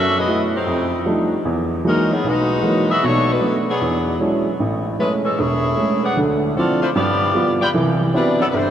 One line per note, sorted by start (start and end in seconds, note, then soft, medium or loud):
0.00 0.22 F#2 medium
0.00 0.22 F#3 medium
0.00 0.17 C#4 medium
0.00 0.16 F#4 medium
0.00 0.16 A4 medium
0.00 0.16 E5 loud
0.18 0.41 B3 medium
0.18 0.41 E4 medium
0.18 0.41 G#4 medium
0.18 0.41 D#5 medium
0.28 0.54 F#3 soft
0.28 0.54 A3 soft
0.28 0.54 E4 medium
0.56 1.04 A3 medium
0.56 1.04 D#4 medium
0.56 1.04 G4 medium
0.56 1.04 C5 medium
0.67 1.00 F2 medium
1.06 1.32 F3 soft
1.06 1.32 G3 soft
1.06 1.32 A3 soft
1.06 1.32 D4 soft
1.06 1.33 D#4 medium
1.45 1.79 E2 medium
1.84 2.11 E3 soft
1.84 2.11 F#3 soft
1.84 2.11 G#3 soft
1.84 2.09 G#3 medium
1.84 2.11 A#3 soft
1.84 2.11 D#4 medium
1.84 2.10 D#4 medium
1.84 2.09 F#4 medium
1.84 2.10 A#4 medium
2.12 2.25 F#3 medium
2.12 2.25 B3 medium
2.12 2.25 D#4 medium
2.12 2.25 G#4 medium
2.24 2.58 B1 medium
2.24 2.90 G#3 medium
2.24 2.89 F#4 medium
2.24 2.90 B4 medium
2.28 2.90 D#4 medium
2.63 2.89 E3 soft
2.63 2.89 F#3 soft
2.63 2.89 G#3 soft
2.63 2.89 A#3 soft
2.63 2.89 D#4 medium
2.90 3.02 B3 medium
2.90 3.02 F#4 medium
2.90 3.03 G#4 medium
2.90 3.03 E5 loud
3.03 3.36 B1 medium
3.03 3.36 B2 medium
3.03 3.30 A3 medium
3.03 3.30 D4 medium
3.03 3.30 F#4 medium
3.03 3.30 C#5 loud
3.31 3.56 A3 medium
3.31 3.57 D4 medium
3.31 3.56 F#4 medium
3.31 3.56 B4 medium
3.42 3.68 A3 soft
3.42 3.68 B3 soft
3.42 3.68 D4 medium
3.69 4.18 F#3 medium
3.69 4.18 B3 medium
3.69 4.18 D4 medium
3.69 4.18 G#4 medium
3.81 4.15 E2 medium
4.20 4.46 F#3 soft
4.20 4.46 G#3 soft
4.20 4.47 C#4 soft
4.20 4.47 D4 soft
4.20 4.47 E4 medium
4.60 4.93 A1 medium
4.99 5.25 G#3 soft
4.99 5.11 G#3 medium
4.99 5.25 A3 soft
4.99 5.26 C#4 medium
4.99 5.11 C#4 medium
4.99 5.11 E4 medium
4.99 5.11 B4 medium
5.25 5.38 E3 medium
5.25 5.38 G#3 medium
5.25 5.38 C#4 medium
5.25 5.38 A4 medium
5.39 5.72 E1 medium
5.39 6.03 A3 medium
5.39 6.03 E4 medium
5.39 6.03 G#4 medium
5.39 6.03 C#5 medium
5.77 6.04 G#3 soft
5.77 6.04 A3 soft
5.77 6.04 C#4 medium
6.04 6.17 D4 medium
6.04 6.17 G#4 medium
6.04 6.17 B4 medium
6.04 6.17 F#5 medium
6.17 6.51 D2 medium
6.17 6.51 D3 medium
6.56 6.82 F3 soft
6.56 6.83 C4 soft
6.56 6.80 C4 medium
6.56 6.83 D4 soft
6.56 6.83 E4 medium
6.56 6.80 F4 medium
6.56 6.80 A4 medium
6.56 6.80 D5 medium
6.82 6.88 A3 medium
6.82 6.89 E4 medium
6.82 6.89 F4 medium
6.82 6.89 C5 medium
6.96 7.29 G2 medium
6.96 7.56 B3 medium
6.96 7.56 F4 medium
6.96 7.56 G4 medium
6.96 7.56 D5 medium
7.35 7.61 G3 soft
7.35 7.61 B3 soft
7.35 7.62 F4 medium
7.61 7.67 F4 medium
7.61 7.67 B4 medium
7.61 7.68 D5 medium
7.61 7.68 G5 medium
7.74 8.08 C2 medium
7.74 8.08 E3 medium
8.14 8.37 G3 medium
8.14 8.40 B3 soft
8.14 8.40 C4 soft
8.14 8.40 D4 soft
8.14 8.37 D4 medium
8.14 8.40 E4 soft
8.14 8.37 E4 medium
8.14 8.40 F#4 medium
8.14 8.38 B4 medium
8.41 8.45 F#3 medium
8.41 8.44 B3 medium
8.41 8.44 D4 medium
8.41 8.45 A4 medium
8.50 8.70 G1 medium
8.50 8.70 G3 medium
8.50 8.70 D4 medium
8.50 8.54 B4 medium
8.54 8.70 E4 medium
8.54 8.70 C5 medium